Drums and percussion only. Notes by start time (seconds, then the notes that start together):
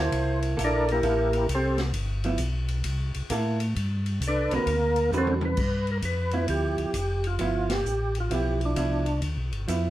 0.12 kick, ride
0.42 ride
0.58 kick, hi-hat pedal, ride
0.88 ride
1.03 kick, ride
1.33 ride
1.49 kick, hi-hat pedal, ride
1.78 snare, ride
1.93 kick, ride
2.24 ride
2.38 kick, hi-hat pedal, ride
2.68 ride
2.84 kick, ride
3.14 ride
3.30 kick, hi-hat pedal, ride
3.60 ride
3.76 kick, ride
4.06 ride
4.21 kick, hi-hat pedal, ride
4.51 ride
4.67 kick, ride
4.96 ride
5.12 hi-hat pedal, high tom
5.27 high tom
5.41 high tom
5.57 kick, crash
5.87 ride
6.02 kick, hi-hat pedal, ride
6.31 ride
6.48 kick, ride
6.78 ride
6.94 kick, hi-hat pedal, ride
7.24 ride
7.39 kick, ride
7.69 snare, ride
7.85 hi-hat pedal
8.15 ride
8.30 kick, ride
8.61 ride
8.76 kick, hi-hat pedal, ride
9.06 ride
9.22 kick, ride
9.53 ride
9.68 kick, hi-hat pedal, ride